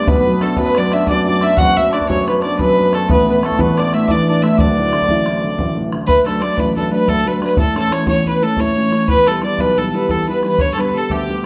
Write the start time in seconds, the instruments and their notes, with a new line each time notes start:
Already playing: hammered dulcimer A3 D4 E4 F#4
0.07 upright piano B1 B2, hammered dulcimer B3, fiddle B4, bodhran
0.20 hammered dulcimer B3
0.26 upright piano F#3, bodhran
0.31 hammered dulcimer B3
0.40 hammered dulcimer A3, upright piano D4, fiddle A4, bodhran
0.56 upright piano F#2 F#3, hammered dulcimer B3, fiddle B4, bodhran
0.75 upright piano F#3, hammered dulcimer D4, fiddle D5, bodhran
0.90 upright piano D4, hammered dulcimer E4, fiddle E5, bodhran
1.06 hammered dulcimer D4, fiddle D5, bodhran
1.10 upright piano F#2 F#3
1.24 hammered dulcimer D4, fiddle D5
1.28 upright piano F#3
1.40 upright piano D4, hammered dulcimer E4, fiddle E5, bodhran
1.57 upright piano F#1 F#2, hammered dulcimer F#4, fiddle F#5, bodhran
1.74 hammered dulcimer E4, fiddle E5, bodhran
1.79 upright piano F#3
1.90 hammered dulcimer D4, upright piano D4, fiddle D5, bodhran
2.01 bodhran
2.07 upright piano F#2 F#3, hammered dulcimer C#4, fiddle C#5, bodhran
2.25 upright piano F#3, hammered dulcimer B3, fiddle B4, bodhran
2.40 hammered dulcimer D4, fiddle D5, bodhran
2.45 upright piano D4
2.57 upright piano F#2 F#3, hammered dulcimer B3, fiddle B4, bodhran
2.77 upright piano F#3, fiddle B4
2.92 hammered dulcimer A3, upright piano D4, fiddle A4, bodhran
3.09 upright piano A1 A2, hammered dulcimer B3, fiddle B4, bodhran
3.27 upright piano E3, hammered dulcimer B3, fiddle B4, bodhran
3.43 hammered dulcimer A3, upright piano A3, fiddle A4, bodhran
3.51 bodhran
3.58 upright piano E2 E3, hammered dulcimer B3, fiddle B4, bodhran
3.77 upright piano E3, hammered dulcimer D4, fiddle D5, bodhran
3.92 upright piano A3, hammered dulcimer E4, fiddle E5, bodhran
3.96 fiddle E5
4.07 upright piano E2 E3, hammered dulcimer D4, fiddle D5, bodhran
4.26 upright piano E3, hammered dulcimer D4, fiddle D5
4.42 upright piano A3, hammered dulcimer E4, fiddle E5, bodhran
4.57 upright piano D1 D2, hammered dulcimer D4, fiddle D5, bodhran
4.77 upright piano A2, bodhran
4.93 upright piano D3, bodhran
5.02 bodhran
5.08 upright piano A1 A2, bodhran
5.26 upright piano A2, bodhran
5.44 upright piano D3
5.59 upright piano A1 A2, bodhran
5.78 upright piano A2
5.92 upright piano D3, bodhran
6.07 upright piano D2, fiddle B4, bodhran
6.25 upright piano F#3 A3 D4, fiddle A4, bodhran
6.40 upright piano F#3 A3 D4, fiddle D5, bodhran
6.56 upright piano A1, fiddle B4, bodhran
6.77 upright piano F#3 A3 D4, fiddle A4, bodhran
6.91 upright piano F#3 A3 D4, fiddle B4
7.07 upright piano D2, fiddle A4, bodhran
7.17 bodhran
7.26 upright piano F#3 A3 D4, fiddle B4
7.41 upright piano F#3 A3 D4, fiddle B4, bodhran
7.57 upright piano A2, fiddle A4, bodhran
7.75 upright piano E3 A3 C#4, fiddle A4, bodhran
7.91 upright piano E3 A3 C#4, fiddle C#5, bodhran
8.07 upright piano E2, fiddle C#5, bodhran
8.26 upright piano E3 A3 C#4, fiddle B4, bodhran
8.42 upright piano E3 A3 C#4, fiddle A4
8.57 upright piano A2, fiddle C#5, bodhran
8.68 bodhran
8.77 upright piano E3 A3 C#4
8.92 upright piano E3 A3 C#4, bodhran
9.08 upright piano E2, fiddle B4, bodhran
9.26 upright piano E3 G3 B3, fiddle A4, bodhran
9.42 upright piano E3 G3 B3, fiddle D5, bodhran
9.58 upright piano B1, fiddle B4, bodhran
9.77 upright piano E3 G3 B3, fiddle A4, bodhran
9.94 upright piano E3 G3 B3, fiddle B4
10.09 upright piano E2, fiddle A4, bodhran
10.18 bodhran
10.28 upright piano E3 G3 B3, fiddle B4
10.43 upright piano E3 G3 B3, fiddle B4, bodhran
10.47 fiddle B4
10.58 upright piano G2, fiddle C#5, bodhran
10.74 upright piano D3, fiddle A4
10.78 upright piano G3 B3, fiddle B4, bodhran
10.94 upright piano D3 G3 B3, fiddle A4
11.10 upright piano D2, fiddle G4, bodhran
11.28 upright piano D3 G3 B3, bodhran